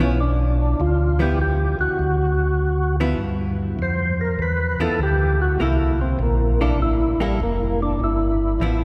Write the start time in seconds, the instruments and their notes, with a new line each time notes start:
Already playing: tonewheel organ B1 C#4
0.00 hollow-body jazz guitar F3 B3 E4
0.20 tonewheel organ D4
0.80 tonewheel organ D2 F4
1.19 hollow-body jazz guitar F3 B3 E4, tonewheel organ G4
1.41 tonewheel organ G4
1.79 tonewheel organ D2 F#4
1.99 tonewheel organ D2
3.00 hollow-body jazz guitar F3 B3 E4
3.19 tonewheel organ G2
3.79 tonewheel organ F2 C5
4.21 tonewheel organ A#4
4.39 tonewheel organ E2 B4
4.79 tonewheel organ E2 A4, hollow-body jazz guitar F3 B3 E4
4.99 tonewheel organ D2
5.03 tonewheel organ G4
5.42 tonewheel organ F#4
5.59 tonewheel organ C2 E4, hollow-body jazz guitar A#3 E4 A4
6.01 tonewheel organ C4
6.19 tonewheel organ A#1 A#3
6.61 hollow-body jazz guitar A#3 E4 A4, tonewheel organ D4
6.80 tonewheel organ A1 E4
7.20 tonewheel organ G3, hollow-body jazz guitar A#3 E4 A4
7.40 tonewheel organ F1 A#3
7.82 tonewheel organ D4
8.00 tonewheel organ G1 E4
8.60 tonewheel organ A1, hollow-body jazz guitar F3 B3 E4